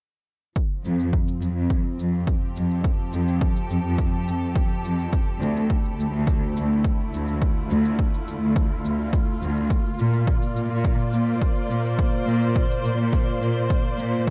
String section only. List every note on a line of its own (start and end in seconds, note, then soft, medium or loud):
0.57 5.14 F3 medium
0.76 6.96 C4 medium
2.11 6.96 G4 medium
2.52 6.96 A4 medium
5.13 9.71 D3 medium
5.21 9.70 A3 medium
5.40 9.70 E4 medium
7.19 14.30 F4 medium
9.71 14.30 A#3 medium
10.05 14.30 D5 medium
10.98 14.30 C5 medium
14.27 14.30 G3 medium